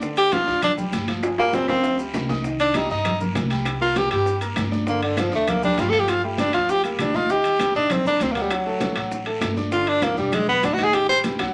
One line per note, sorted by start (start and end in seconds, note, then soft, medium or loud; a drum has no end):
0.00 0.42 G1 medium
0.00 0.26 D3 medium
0.00 0.26 D4 medium
0.00 0.27 D5 medium
0.00 high bongo medium
0.00 high conga soft
0.00 long guiro medium
0.00 maracas medium
0.17 0.35 G4 loud
0.17 high conga soft
0.17 high timbale medium
0.17 maracas medium
0.31 0.44 F3 medium
0.31 0.44 F4 medium
0.31 0.63 F4 loud
0.31 0.44 F5 medium
0.31 high bongo medium
0.31 high conga medium
0.31 high timbale medium
0.31 short guiro medium
0.31 claves medium
0.31 maracas medium
0.47 0.90 D2 loud
0.47 0.72 D4 medium
0.47 0.72 D5 medium
0.47 0.72 D6 medium
0.47 high conga soft
0.47 short guiro medium
0.47 maracas soft
0.62 0.73 D4 medium
0.62 high bongo medium
0.62 high conga soft
0.62 low conga medium
0.62 high timbale medium
0.62 claves medium
0.62 maracas medium
0.77 1.02 G3 medium
0.77 1.02 G4 medium
0.77 1.03 G5 medium
0.77 high conga soft
0.77 low conga medium
0.77 maracas medium
0.93 1.63 G1 medium
0.93 high bongo medium
0.93 low bongo medium
0.93 high conga medium
0.93 high timbale medium
0.93 short guiro medium
0.93 maracas medium
1.08 1.33 F3 medium
1.08 1.33 F4 medium
1.08 1.33 F5 medium
1.08 high conga medium
1.08 high timbale medium
1.08 short guiro medium
1.08 maracas soft
1.23 high bongo medium
1.23 high conga soft
1.23 high timbale medium
1.23 long guiro medium
1.23 claves medium
1.23 maracas medium
1.38 1.63 G3 medium
1.38 1.57 A#3 medium
1.38 1.63 G4 medium
1.38 1.64 G5 medium
1.38 high bongo soft
1.38 high conga soft
1.38 high timbale loud
1.53 1.69 C4 medium
1.53 high bongo medium
1.53 high conga medium
1.53 high timbale loud
1.53 short guiro medium
1.53 maracas medium
1.68 2.11 D2 medium
1.68 1.93 F3 medium
1.68 1.97 C4 medium
1.68 1.94 F4 medium
1.68 1.94 F5 medium
1.68 high conga soft
1.68 low timbale medium
1.68 short guiro medium
1.68 claves medium
1.68 maracas soft
1.83 high bongo medium
1.83 high conga soft
1.83 low timbale medium
1.83 long guiro medium
1.83 maracas medium
1.99 2.24 G3 medium
1.99 2.24 G4 medium
1.99 2.24 G5 medium
1.99 high bongo soft
1.99 high conga soft
1.99 maracas medium
2.14 2.84 C2 medium
2.14 high bongo medium
2.14 low bongo medium
2.14 high conga medium
2.14 low timbale medium
2.14 short guiro medium
2.14 claves medium
2.14 maracas medium
2.29 2.42 D#4 medium
2.29 2.42 D#5 medium
2.29 2.42 D#6 medium
2.29 high conga medium
2.29 low timbale medium
2.29 short guiro medium
2.29 maracas soft
2.44 2.70 D#3 medium
2.44 2.70 D#4 medium
2.44 2.70 D#5 medium
2.44 high bongo medium
2.44 high conga soft
2.44 long guiro medium
2.44 maracas medium
2.60 2.78 D4 loud
2.60 high conga soft
2.60 high timbale medium
2.60 maracas medium
2.74 2.87 G3 medium
2.74 2.91 D#4 medium
2.74 2.88 G4 medium
2.74 2.88 G5 medium
2.74 high bongo medium
2.74 high conga medium
2.74 high timbale medium
2.74 short guiro medium
2.74 claves medium
2.74 maracas medium
2.90 3.32 G2 medium
2.90 3.15 D#4 medium
2.90 3.19 D#4 medium
2.90 3.15 D#5 medium
2.90 3.15 D#6 medium
2.90 high conga soft
2.90 short guiro medium
2.90 maracas soft
3.05 high bongo medium
3.05 high conga soft
3.05 low conga medium
3.05 high timbale medium
3.05 long guiro medium
3.05 claves medium
3.05 maracas medium
3.20 3.45 A#3 medium
3.20 3.45 A#4 medium
3.20 3.46 A#5 medium
3.20 high conga soft
3.20 low conga medium
3.20 maracas medium
3.35 4.06 C2 medium
3.35 high bongo medium
3.35 low bongo medium
3.35 high conga medium
3.35 high timbale medium
3.35 low timbale medium
3.35 short guiro medium
3.35 maracas medium
3.50 3.75 G3 medium
3.50 3.75 G4 medium
3.50 3.75 G5 medium
3.50 high conga medium
3.50 high timbale medium
3.50 short guiro medium
3.50 maracas soft
3.65 high bongo medium
3.65 high timbale medium
3.65 long guiro medium
3.65 claves medium
3.65 maracas medium
3.81 4.06 A#3 medium
3.81 3.99 F4 medium
3.81 4.06 A#4 medium
3.81 4.06 A#5 medium
3.81 high bongo soft
3.81 high conga soft
3.95 4.11 G4 medium
3.95 high bongo medium
3.95 high conga loud
3.95 high timbale medium
3.95 short guiro medium
3.95 maracas medium
4.10 4.54 G2 medium
4.10 4.36 G3 medium
4.10 4.36 G4 medium
4.10 4.40 G4 medium
4.10 4.36 G5 medium
4.10 high bongo soft
4.10 high conga soft
4.10 high timbale medium
4.10 short guiro medium
4.10 claves medium
4.10 maracas soft
4.26 high bongo medium
4.26 high conga soft
4.26 long guiro medium
4.26 maracas medium
4.41 4.66 A#3 medium
4.41 4.66 A#4 medium
4.41 4.67 A#5 medium
4.41 high bongo soft
4.41 high conga soft
4.41 high timbale medium
4.41 maracas medium
4.56 5.27 G2 medium
4.56 high bongo medium
4.56 low bongo medium
4.56 high conga medium
4.56 high timbale medium
4.56 low timbale medium
4.56 short guiro medium
4.56 claves medium
4.56 maracas medium
4.72 4.84 D4 medium
4.72 4.84 D5 medium
4.72 4.84 D6 medium
4.72 high conga medium
4.72 short guiro medium
4.72 maracas soft
4.86 5.11 D3 medium
4.86 5.02 A#3 medium
4.86 5.12 D4 medium
4.86 5.12 D5 medium
4.86 high bongo medium
4.86 high conga soft
4.86 long guiro medium
4.86 maracas medium
5.02 5.21 D3 medium
5.02 high conga soft
5.02 high timbale medium
5.17 5.29 F3 medium
5.17 5.34 F3 medium
5.17 5.30 F4 medium
5.17 5.30 F5 medium
5.17 high bongo medium
5.17 high conga loud
5.17 high timbale medium
5.17 short guiro medium
5.17 claves medium
5.17 maracas medium
5.32 5.75 D2 loud
5.32 5.50 A3 medium
5.32 5.57 D4 medium
5.32 5.57 D5 medium
5.32 5.58 D6 medium
5.32 high conga soft
5.32 short guiro medium
5.32 maracas soft
5.47 5.63 A#3 medium
5.47 high bongo medium
5.47 high conga soft
5.47 low conga medium
5.47 high timbale medium
5.47 long guiro medium
5.47 claves medium
5.47 maracas medium
5.62 5.87 G3 medium
5.62 5.81 D4 medium
5.62 5.87 G4 medium
5.62 5.88 G5 medium
5.62 high conga soft
5.62 low conga medium
5.62 maracas medium
5.77 6.48 G1 medium
5.77 5.91 F4 medium
5.77 high bongo medium
5.77 low bongo medium
5.77 high conga medium
5.77 high timbale medium
5.77 low timbale medium
5.77 short guiro medium
5.77 maracas medium
5.90 6.18 F3 medium
5.90 6.18 F4 medium
5.90 6.01 A4 loud
5.90 high conga medium
5.90 high timbale medium
5.90 short guiro medium
5.90 maracas soft
5.94 6.18 F5 medium
6.00 6.12 G4 medium
6.07 6.24 F4 medium
6.07 high bongo medium
6.07 high conga soft
6.07 high timbale medium
6.07 long guiro medium
6.07 claves medium
6.07 maracas medium
6.24 6.48 G3 medium
6.24 6.40 A3 medium
6.24 6.48 G4 medium
6.24 6.49 G5 medium
6.24 high bongo soft
6.24 high conga soft
6.38 6.54 D4 medium
6.38 high bongo medium
6.38 high conga medium
6.38 high timbale medium
6.38 short guiro medium
6.38 maracas medium
6.53 6.96 D2 loud
6.53 6.78 F3 medium
6.53 6.79 F4 medium
6.53 6.72 F4 medium
6.53 6.79 F5 medium
6.53 high bongo soft
6.53 high conga soft
6.53 high timbale medium
6.53 short guiro medium
6.53 claves medium
6.53 maracas soft
6.68 6.84 G4 loud
6.68 high bongo medium
6.68 high conga soft
6.68 long guiro medium
6.68 maracas medium
6.84 7.09 G3 medium
6.84 7.01 A#3 medium
6.84 7.09 G4 medium
6.84 7.09 G5 medium
6.84 high bongo soft
6.84 high conga soft
6.84 high timbale medium
6.84 maracas medium
6.99 7.69 D#2 medium
6.99 7.17 D4 medium
6.99 high bongo medium
6.99 low bongo medium
6.99 high conga medium
6.99 high timbale medium
6.99 short guiro medium
6.99 claves medium
6.99 maracas medium
7.14 7.27 D#4 medium
7.14 7.33 F4 medium
7.14 7.27 D#5 medium
7.14 7.27 D#6 medium
7.14 high conga medium
7.14 short guiro medium
7.14 maracas soft
7.29 7.54 D#3 medium
7.29 7.55 D#4 medium
7.29 7.75 G4 loud
7.29 7.55 D#5 medium
7.29 high bongo medium
7.29 high conga soft
7.29 long guiro medium
7.29 maracas medium
7.44 high conga soft
7.44 high timbale medium
7.44 maracas medium
7.59 7.72 G3 medium
7.59 7.72 G4 medium
7.59 7.72 G5 medium
7.59 high bongo medium
7.59 high conga loud
7.59 high timbale medium
7.59 short guiro medium
7.59 claves medium
7.59 maracas medium
7.75 8.17 A#1 medium
7.75 7.93 D4 medium
7.75 8.00 D#4 medium
7.75 8.00 D#5 medium
7.75 8.00 D#6 medium
7.75 high conga soft
7.75 short guiro medium
7.75 maracas soft
7.90 8.06 C4 medium
7.90 high bongo medium
7.90 high conga soft
7.90 low conga medium
7.90 high timbale medium
7.90 long guiro medium
7.90 claves medium
7.90 maracas medium
8.05 8.31 A#3 medium
8.05 8.24 D4 medium
8.05 8.31 A#4 medium
8.05 8.31 A#5 medium
8.05 high conga soft
8.05 low conga medium
8.05 maracas medium
8.20 8.91 D2 medium
8.20 8.34 C4 medium
8.20 high bongo medium
8.20 low bongo medium
8.20 high conga medium
8.20 high timbale medium
8.20 short guiro medium
8.20 maracas medium
8.32 8.61 F#3 medium
8.32 8.43 A#3 medium
8.32 8.61 F#4 medium
8.32 high conga medium
8.32 high timbale medium
8.32 short guiro medium
8.36 8.61 F#5 medium
8.36 maracas soft
8.42 8.53 G3 medium
8.50 9.12 F#3 medium
8.50 high bongo medium
8.50 high conga soft
8.50 high timbale medium
8.50 long guiro medium
8.50 claves medium
8.50 maracas medium
8.66 8.91 A3 medium
8.66 8.91 A4 medium
8.66 8.91 A5 medium
8.66 high bongo soft
8.66 high conga soft
8.80 high bongo medium
8.80 high conga loud
8.80 high timbale medium
8.80 short guiro medium
8.80 maracas medium
8.96 9.38 A1 loud
8.96 9.21 F#3 medium
8.96 9.21 F#4 medium
8.96 9.21 F#5 medium
8.96 high bongo soft
8.96 high conga soft
8.96 high timbale medium
8.96 short guiro medium
8.96 claves medium
8.96 maracas soft
9.11 high bongo medium
9.11 high conga soft
9.11 long guiro medium
9.11 maracas medium
9.26 9.51 A3 medium
9.26 9.52 A4 medium
9.26 9.52 A5 medium
9.26 high bongo soft
9.26 high conga soft
9.26 high timbale medium
9.41 10.12 G1 medium
9.41 high bongo medium
9.41 low bongo medium
9.41 high conga medium
9.41 high timbale medium
9.41 low timbale medium
9.41 short guiro medium
9.41 claves medium
9.41 maracas medium
9.56 9.69 D4 medium
9.56 9.69 D5 medium
9.56 9.70 D6 medium
9.56 high conga medium
9.56 short guiro medium
9.56 maracas soft
9.72 9.97 D3 medium
9.72 9.97 D4 medium
9.72 9.90 F4 medium
9.72 9.97 D5 medium
9.72 high bongo medium
9.72 high conga soft
9.72 long guiro medium
9.72 maracas medium
9.87 10.05 D4 medium
9.87 high conga soft
9.87 high timbale medium
10.02 10.15 F3 medium
10.02 10.18 A#3 medium
10.02 10.15 F4 medium
10.02 10.15 F5 medium
10.02 high bongo medium
10.02 high conga loud
10.02 high timbale medium
10.02 short guiro medium
10.02 claves medium
10.02 maracas medium
10.16 10.60 E1 medium
10.16 10.35 G3 medium
10.16 10.42 D4 medium
10.16 10.42 D5 medium
10.16 10.43 D6 medium
10.16 high conga soft
10.16 short guiro medium
10.16 maracas soft
10.32 10.48 G#3 medium
10.32 high bongo medium
10.32 high conga soft
10.32 low conga medium
10.32 high timbale medium
10.32 long guiro medium
10.32 claves medium
10.32 maracas medium
10.48 10.73 B3 medium
10.48 10.66 B3 medium
10.48 10.73 B4 medium
10.48 10.73 B5 medium
10.48 high conga soft
10.48 low conga medium
10.62 11.33 A1 medium
10.62 10.75 D4 medium
10.62 high bongo medium
10.62 low bongo medium
10.62 high conga medium
10.62 high timbale medium
10.62 short guiro medium
10.62 maracas medium
10.74 11.03 D#3 medium
10.74 10.86 F#4 medium
10.78 11.03 D#4 medium
10.78 11.03 D#5 medium
10.78 high conga medium
10.78 high timbale medium
10.78 short guiro medium
10.78 maracas soft
10.84 10.96 G#4 loud
10.93 11.09 G4 medium
10.93 high bongo medium
10.93 high conga soft
10.93 high timbale loud
10.93 long guiro medium
10.93 claves medium
10.93 maracas medium
11.08 11.33 G3 medium
11.08 11.33 G4 medium
11.08 11.18 C5 loud
11.08 11.34 G5 medium
11.08 high bongo soft
11.08 high conga soft
11.24 high bongo medium
11.24 high conga loud
11.24 high timbale medium
11.24 short guiro medium
11.24 maracas medium
11.39 11.54 D2 loud
11.39 11.54 F#3 medium
11.39 11.54 F#4 medium
11.39 11.54 F#5 medium
11.39 high bongo medium
11.39 high conga soft
11.39 high timbale medium
11.39 short guiro medium
11.39 claves medium
11.39 maracas soft